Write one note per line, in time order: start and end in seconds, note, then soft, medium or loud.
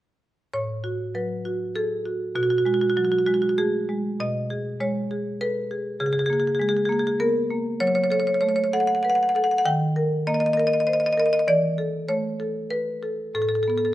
0.54 2.32 A2 medium
0.54 1.13 C#5 medium
0.84 1.33 F#4 soft
1.15 1.63 F#3 soft
1.15 1.73 B4 medium
1.45 1.94 F#4 soft
1.75 2.06 G#4 soft
1.75 2.33 A4 medium
2.05 2.34 F#4 soft
2.35 4.16 B2 medium
2.35 2.43 F#4 medium
2.43 2.50 F#4 medium
2.50 2.58 F#4 medium
2.58 2.66 F#4 medium
2.65 3.14 G#3 soft
2.65 2.74 F#4 soft
2.74 2.81 F#4 soft
2.81 2.90 F#4 medium
2.90 2.97 F#4 soft
2.97 3.46 F#3 soft
2.97 3.05 F#4 medium
3.05 3.12 F#4 soft
3.12 3.19 F#4 medium
3.19 3.26 F#4 soft
3.26 3.77 G#3 soft
3.26 3.34 F#4 medium
3.34 3.42 F#4 soft
3.42 3.49 F#4 medium
3.49 3.54 F#4 medium
3.58 3.89 A3 soft
3.58 4.18 G#4 medium
3.89 4.20 G#3 soft
4.20 5.96 B2 medium
4.20 4.78 D#5 medium
4.50 4.98 G#4 soft
4.80 5.28 G#3 soft
4.80 5.38 C#5 medium
5.11 5.59 G#4 soft
5.41 5.71 A4 soft
5.41 5.98 B4 medium
5.71 5.99 G#4 soft
6.00 7.76 C#3 medium
6.00 6.06 G#4 medium
6.06 6.13 G#4 medium
6.13 6.19 G#4 medium
6.19 6.26 G#4 medium
6.26 6.78 A#3 soft
6.26 6.33 G#4 medium
6.33 6.40 G#4 medium
6.40 6.47 G#4 medium
6.47 6.55 G#4 medium
6.55 6.62 G#4 medium
6.60 7.08 G#3 soft
6.60 6.69 G#4 medium
6.69 6.77 G#4 medium
6.77 6.85 G#4 medium
6.85 7.38 A#3 soft
6.85 6.92 G#4 medium
6.92 6.99 G#4 medium
6.99 7.07 G#4 medium
7.07 7.16 G#4 medium
7.20 7.50 B3 soft
7.20 7.78 A#4 medium
7.50 7.80 A#3 soft
7.80 9.62 F#3 medium
7.80 7.87 C#5 medium
7.87 7.95 C#5 medium
7.95 8.04 C#5 medium
8.04 8.12 C#5 medium
8.10 8.61 A4 soft
8.10 8.20 C#5 medium
8.20 8.27 C#5 medium
8.27 8.34 C#5 medium
8.34 8.41 C#5 medium
8.41 8.92 A3 soft
8.41 8.49 C#5 medium
8.49 8.56 C#5 medium
8.56 8.64 C#5 medium
8.64 8.70 C#5 medium
8.73 9.23 A4 medium
8.73 8.80 F#5 medium
8.80 8.87 F#5 medium
8.87 8.95 F#5 medium
8.95 9.03 F#5 medium
9.03 9.35 B4 soft
9.03 9.10 F#5 medium
9.10 9.15 F#5 medium
9.15 9.23 F#5 medium
9.23 9.29 F#5 medium
9.29 9.36 F#5 medium
9.35 9.65 A4 medium
9.35 9.44 F#5 medium
9.44 9.51 F#5 medium
9.51 9.58 F#5 medium
9.58 9.62 F#5 medium
9.65 11.44 D#3 medium
9.65 10.24 G5 medium
9.96 10.45 A#4 medium
10.27 10.76 A#3 medium
10.27 10.34 D#5 medium
10.34 10.40 D#5 medium
10.40 10.46 D#5 medium
10.46 10.53 D#5 medium
10.53 10.60 D#5 medium
10.57 11.06 A#4 medium
10.57 10.67 D#5 medium
10.67 10.73 D#5 medium
10.73 10.80 D#5 medium
10.80 10.87 D#5 medium
10.87 11.18 C5 soft
10.87 10.93 D#5 medium
10.93 11.00 D#5 medium
11.00 11.06 D#5 medium
11.06 11.13 D#5 medium
11.13 11.20 D#5 medium
11.18 11.48 A#4 medium
11.18 11.26 D#5 medium
11.26 11.33 D#5 medium
11.33 11.39 D#5 medium
11.39 11.44 D#5 medium
11.48 13.31 E3 medium
11.48 12.06 D5 medium
11.78 12.27 A4 soft
12.09 12.58 A3 soft
12.09 12.68 C#5 medium
12.40 12.90 A4 soft
12.70 13.32 B4 medium
13.03 13.34 A4 soft
13.35 13.94 A2 medium
13.35 13.42 A4 medium
13.42 13.49 A4 soft
13.49 13.55 A4 medium
13.55 13.63 A4 medium
13.63 13.70 A4 medium
13.68 13.94 B3 soft
13.68 13.78 A4 soft
13.78 13.85 A4 medium
13.85 13.94 A4 medium